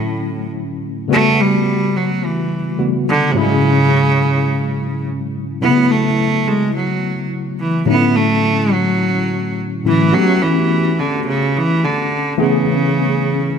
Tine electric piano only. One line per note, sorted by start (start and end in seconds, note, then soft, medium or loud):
0.00 1.06 A2 medium
0.00 1.06 D3 medium
0.00 1.06 F#3 medium
0.00 1.07 A3 medium
0.00 1.07 C#4 medium
0.00 1.07 E4 medium
1.08 2.75 C#3 medium
1.08 2.76 G3 medium
1.08 2.76 A3 medium
1.08 2.76 B3 medium
1.08 2.76 F#4 medium
2.78 3.33 C#3 soft
2.78 3.34 G3 soft
2.78 3.36 A3 soft
2.78 3.36 B3 soft
2.78 3.36 F#4 medium
3.34 5.57 G#2 medium
3.34 5.57 C#3 medium
3.34 5.57 F#3 medium
3.34 3.42 G3 medium
3.34 5.58 C#4 medium
3.34 5.58 E4 medium
3.42 5.61 G#3 medium
5.61 5.68 C3 medium
5.61 7.83 F#3 medium
5.61 7.84 A3 medium
5.61 7.84 B3 medium
5.61 7.84 E4 medium
5.67 7.86 C#3 medium
7.85 9.80 A2 medium
7.85 9.80 D3 medium
7.85 9.80 F#3 medium
7.85 9.80 A3 medium
7.85 9.81 C#4 medium
7.85 7.94 D#4 medium
7.94 9.84 E4 medium
9.85 10.13 A2 medium
9.85 10.13 D3 soft
9.85 10.13 F#3 soft
9.85 10.11 A3 medium
9.85 10.13 C#4 medium
9.85 10.14 E4 medium
10.12 12.34 A3 medium
10.12 12.35 B3 medium
10.12 12.35 C#4 medium
10.12 12.34 F#4 medium
10.12 12.35 G4 medium
12.38 13.59 E3 medium
12.38 13.59 A3 medium
12.38 13.59 B3 medium
12.38 13.59 C#4 medium
12.38 13.59 G#4 medium